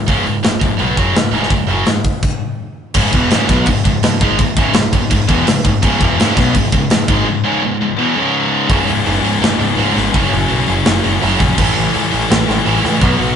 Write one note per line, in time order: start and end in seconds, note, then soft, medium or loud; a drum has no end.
0.08 0.25 C#1 medium
0.08 0.25 C#2 medium
0.08 0.25 G#2 medium
0.08 0.26 C#3 medium
0.08 kick loud
0.08 open hi-hat medium
0.26 0.43 C#1 medium
0.26 0.40 C#2 medium
0.26 0.40 G#2 medium
0.26 open hi-hat medium
0.43 0.60 C#1 medium
0.43 0.58 C#2 medium
0.43 0.58 G#2 medium
0.43 snare loud
0.43 open hi-hat medium
0.61 0.78 C#1 medium
0.61 0.76 C#2 medium
0.61 0.76 G#2 medium
0.61 kick medium
0.61 open hi-hat medium
0.79 0.97 B1 medium
0.79 0.97 B2 medium
0.79 0.97 F#3 loud
0.79 0.97 B3 loud
0.79 open hi-hat medium
0.97 1.14 F#1 medium
0.97 1.15 F#2 medium
0.97 1.15 C#3 medium
0.97 1.15 F#3 medium
0.97 kick medium
0.97 open hi-hat soft
1.15 1.31 C#1 medium
1.15 1.31 C#2 medium
1.15 1.31 G#2 medium
1.15 snare loud
1.15 open hi-hat medium
1.32 1.49 C#1 loud
1.32 1.51 C#2 medium
1.32 1.51 G#2 loud
1.32 1.52 C#3 medium
1.32 open hi-hat medium
1.43 snare soft
1.50 1.67 C#1 medium
1.50 1.66 C#2 medium
1.50 1.66 G#2 medium
1.50 kick medium
1.50 open hi-hat medium
1.67 1.85 F#1 loud
1.67 1.87 F#2 medium
1.67 1.88 C#3 loud
1.67 1.88 F#3 medium
1.67 open hi-hat soft
1.86 2.04 C#1 medium
1.86 2.02 C#2 medium
1.86 2.02 G#2 medium
1.86 snare medium
1.86 open hi-hat medium
2.04 kick medium
2.04 open hi-hat medium
2.23 kick loud
2.23 crash medium
2.94 3.12 C#1 loud
2.94 3.12 C#2 medium
2.94 3.13 G#2 medium
2.94 3.14 C#3 loud
2.94 kick loud
2.94 crash loud
2.94 crash medium
3.12 3.30 E1 loud
3.12 3.30 E2 medium
3.12 3.30 B2 loud
3.12 3.31 E3 loud
3.12 kick loud
3.12 crash medium
3.30 3.48 C#1 loud
3.30 3.48 C#2 medium
3.30 3.48 G#2 loud
3.30 3.49 C#3 loud
3.30 snare loud
3.30 crash medium
3.49 3.66 B1 medium
3.49 3.66 B2 medium
3.49 3.67 F#3 loud
3.49 3.67 B3 loud
3.49 kick loud
3.49 snare soft
3.49 crash medium
3.66 3.84 C#1 medium
3.66 3.82 C#2 medium
3.66 3.82 G#2 medium
3.66 kick medium
3.66 crash medium
3.84 4.02 C#1 medium
3.84 3.99 C#2 medium
3.84 3.99 G#2 medium
3.84 kick medium
3.84 crash medium
4.03 4.20 C#1 medium
4.03 4.18 C#2 medium
4.03 4.18 G#2 medium
4.03 snare loud
4.03 crash medium
4.21 4.38 G#1 medium
4.21 4.38 G#2 medium
4.21 4.38 D#3 medium
4.21 4.39 G#3 medium
4.21 kick medium
4.21 crash medium
4.38 4.56 C#1 medium
4.38 4.53 C#2 medium
4.38 4.53 G#2 medium
4.38 kick medium
4.38 crash medium
4.56 4.73 C#1 loud
4.56 4.74 C#2 medium
4.56 4.73 G#2 medium
4.56 4.75 C#3 loud
4.56 kick loud
4.56 crash medium
4.74 4.92 C#1 medium
4.74 4.89 C#2 medium
4.74 4.89 G#2 medium
4.74 snare loud
4.74 crash medium
4.92 5.09 C#1 medium
4.92 5.07 C#2 medium
4.92 5.07 G#2 medium
4.92 kick loud
4.92 crash medium
5.11 5.28 C#1 medium
5.11 5.25 C#2 medium
5.11 5.25 G#2 medium
5.11 kick medium
5.11 crash medium
5.27 5.45 E1 medium
5.27 5.45 E2 loud
5.27 5.46 B2 loud
5.27 5.46 E3 loud
5.27 kick loud
5.27 crash medium
5.46 5.63 C#1 medium
5.46 5.61 C#2 medium
5.46 5.61 G#2 medium
5.46 snare loud
5.46 crash medium
5.64 5.81 C#1 medium
5.64 5.79 C#2 medium
5.64 5.79 G#2 medium
5.64 kick medium
5.64 crash medium
5.82 5.99 C#1 medium
5.82 6.00 C#2 loud
5.82 6.00 G#2 loud
5.82 6.01 C#3 loud
5.82 kick loud
5.82 crash medium
6.00 6.17 E1 loud
6.00 6.18 E2 medium
6.00 6.18 B2 medium
6.00 6.19 E3 loud
6.00 kick loud
6.00 crash medium
6.19 6.36 C#1 loud
6.19 6.35 C#2 loud
6.19 6.35 G#2 medium
6.19 6.36 C#3 medium
6.19 snare loud
6.19 crash medium
6.35 6.54 B1 loud
6.35 6.53 B2 loud
6.35 6.53 F#3 loud
6.35 6.54 B3 loud
6.35 kick loud
6.35 crash medium
6.39 snare soft
6.55 6.71 C#1 medium
6.55 6.69 C#2 medium
6.55 6.69 G#2 medium
6.55 kick medium
6.55 crash medium
6.72 6.89 C#1 medium
6.72 6.87 C#2 medium
6.72 6.87 G#2 medium
6.72 kick medium
6.72 crash medium
6.90 7.07 C#1 medium
6.90 7.05 C#2 medium
6.90 7.05 G#2 medium
6.90 snare loud
6.90 crash medium
7.08 7.25 G#1 medium
7.08 7.25 G#2 medium
7.08 7.26 D#3 medium
7.08 7.27 G#3 medium
7.08 kick loud
7.08 crash medium
7.26 7.41 C#2 medium
7.26 7.41 G#2 medium
7.44 7.62 C#2 medium
7.44 7.62 G#2 loud
7.44 7.62 C#3 loud
7.64 7.78 C#2 medium
7.64 7.78 G#2 medium
7.81 7.95 C#2 medium
7.81 7.95 G#2 medium
7.96 8.15 E2 medium
7.96 8.15 B2 loud
7.96 8.15 E3 medium
8.16 8.69 C#2 medium
8.16 8.69 G#2 loud
8.16 8.70 C#3 medium
8.69 8.82 C#1 loud
8.69 8.78 C#2 medium
8.69 8.79 G#2 medium
8.69 8.87 C#3 medium
8.69 kick loud
8.69 open hi-hat medium
8.78 8.85 C#2 medium
8.78 8.85 G#2 medium
8.85 9.00 C#1 medium
8.85 8.93 C#2 medium
8.85 8.93 G#2 medium
8.85 open hi-hat medium
8.94 9.01 C#2 medium
8.94 9.01 G#2 medium
9.01 9.08 C#2 medium
9.01 9.09 G#2 medium
9.06 9.18 F#1 loud
9.06 9.15 C#2 medium
9.06 9.16 G#2 medium
9.06 open hi-hat medium
9.16 9.22 C#2 medium
9.16 9.23 G#2 medium
9.23 9.35 C#1 medium
9.23 9.30 C#2 medium
9.23 9.31 G#2 medium
9.23 open hi-hat medium
9.31 9.38 C#2 medium
9.31 9.37 G#2 medium
9.38 9.53 C#1 medium
9.38 9.45 C#2 medium
9.38 9.45 G#2 medium
9.43 9.53 C#2 medium
9.43 9.58 G#2 medium
9.43 snare loud
9.43 open hi-hat medium
9.47 9.54 G#2 medium
9.53 9.61 C#2 medium
9.53 9.62 G#2 medium
9.59 9.71 C#1 medium
9.59 9.68 C#2 medium
9.59 9.68 G#2 medium
9.59 open hi-hat medium
9.68 9.76 C#2 medium
9.68 9.76 G#2 medium
9.77 9.89 C#1 medium
9.77 9.83 C#2 medium
9.77 9.83 G#2 medium
9.77 9.95 C#3 loud
9.77 open hi-hat medium
9.83 9.91 C#2 medium
9.83 9.91 G#2 medium
9.92 9.99 C#2 medium
9.92 9.98 G#2 medium
9.92 10.12 C#3 medium
9.96 10.08 G#1 medium
9.96 10.06 C#2 medium
9.96 10.06 G#2 medium
9.96 snare soft
9.96 open hi-hat medium
10.06 10.13 C#2 medium
10.06 10.15 G#2 medium
10.14 10.26 F#1 loud
10.14 10.21 F#2 medium
10.14 10.22 C#3 medium
10.14 10.31 F#3 loud
10.14 kick medium
10.14 open hi-hat medium
10.21 10.29 F#2 medium
10.21 10.30 C#3 medium
10.29 10.44 F#1 medium
10.29 10.36 F#2 medium
10.29 10.38 C#3 medium
10.33 10.44 F#2 medium
10.33 open hi-hat medium
10.38 10.44 C#3 medium
10.45 10.51 F#2 medium
10.45 10.52 C#3 medium
10.50 10.62 B1 medium
10.50 10.59 F#2 medium
10.50 10.60 C#3 medium
10.50 open hi-hat medium
10.60 10.66 F#2 medium
10.60 10.67 C#3 medium
10.67 10.80 F#1 medium
10.67 10.74 F#2 medium
10.67 10.75 C#3 medium
10.67 open hi-hat medium
10.75 10.82 F#2 medium
10.75 10.83 C#3 medium
10.82 10.90 F#2 medium
10.82 10.91 C#3 medium
10.82 snare loud
10.82 open hi-hat medium
10.87 10.98 F#1 medium
10.87 10.97 F#2 medium
10.91 10.97 C#3 medium
10.97 11.05 F#2 medium
10.97 11.05 C#3 medium
11.04 11.16 F#1 medium
11.04 11.12 F#2 medium
11.04 11.13 C#3 medium
11.04 open hi-hat medium
11.12 11.19 F#2 medium
11.12 11.20 C#3 medium
11.20 11.34 F#1 loud
11.20 11.27 F#2 medium
11.20 11.28 C#3 medium
11.20 11.39 F#3 loud
11.20 open hi-hat medium
11.28 11.34 F#2 medium
11.28 11.35 C#3 medium
11.35 11.42 F#2 medium
11.35 11.43 C#3 medium
11.39 11.52 A#1 medium
11.39 11.56 F#3 medium
11.39 kick medium
11.39 open hi-hat medium
11.43 11.49 F#2 medium
11.43 11.50 C#3 medium
11.50 11.57 F#2 medium
11.50 11.58 C#3 medium
11.58 11.70 A1 loud
11.58 11.64 A2 medium
11.58 11.67 E3 medium
11.58 11.75 A3 loud
11.58 kick loud
11.58 crash loud
11.65 11.72 A2 medium
11.65 11.74 E3 medium
11.73 11.88 A1 medium
11.73 11.81 A2 medium
11.73 11.82 E3 medium
11.73 open hi-hat medium
11.81 11.88 A2 medium
11.81 11.90 E3 medium
11.89 11.95 A2 medium
11.89 11.98 E3 medium
11.94 12.06 C#2 medium
11.94 12.02 A2 medium
11.94 open hi-hat medium
11.98 12.04 E3 medium
12.03 12.10 A2 medium
12.03 12.11 E3 medium
12.12 12.24 A1 medium
12.12 12.19 A2 medium
12.12 12.19 E3 medium
12.12 open hi-hat medium
12.19 12.26 A2 medium
12.19 12.27 E3 medium
12.26 12.33 A2 medium
12.26 12.35 E3 medium
12.30 12.42 A1 loud
12.30 12.41 A2 medium
12.30 snare loud
12.30 open hi-hat medium
12.35 12.41 E3 medium
12.42 12.49 A2 medium
12.42 12.49 E3 medium
12.48 12.60 A1 loud
12.48 12.56 A2 medium
12.48 12.57 E3 medium
12.48 snare soft
12.48 open hi-hat medium
12.57 12.64 A2 medium
12.57 12.64 E3 medium
12.64 12.78 A1 medium
12.64 12.71 A2 medium
12.64 12.71 E3 medium
12.64 12.83 A3 loud
12.64 open hi-hat medium
12.71 12.79 A2 medium
12.71 12.79 E3 medium
12.79 12.86 A2 medium
12.79 12.87 E3 medium
12.79 13.00 A3 medium
12.84 12.96 C#2 loud
12.84 12.93 A2 medium
12.84 12.94 E3 medium
12.84 snare soft
12.84 open hi-hat medium
12.93 13.01 A2 medium
12.93 13.02 E3 medium
13.01 13.13 B1 loud
13.01 13.08 B2 medium
13.01 13.10 F#3 loud
13.01 13.18 B3 loud
13.01 kick loud
13.01 open hi-hat medium
13.09 13.15 B2 medium
13.09 13.17 F#3 medium
13.16 13.31 B1 medium
13.16 13.23 B2 medium
13.16 13.24 F#3 medium
13.20 13.31 B2 medium
13.20 open hi-hat medium
13.25 13.32 F#3 medium
13.32 13.36 B2 medium